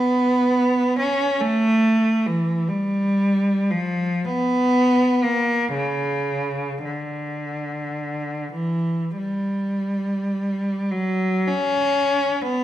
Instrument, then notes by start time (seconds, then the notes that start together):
cello
Already playing: B3
0.99 C#4
1.41 A3
2.27 E3
2.69 G3
3.71 F3
4.25 B3
5.23 A#3
5.74 C#3
6.85 D3
8.53 E3
9.18 G3
10.91 F#3
11.47 C#4
12.41 B3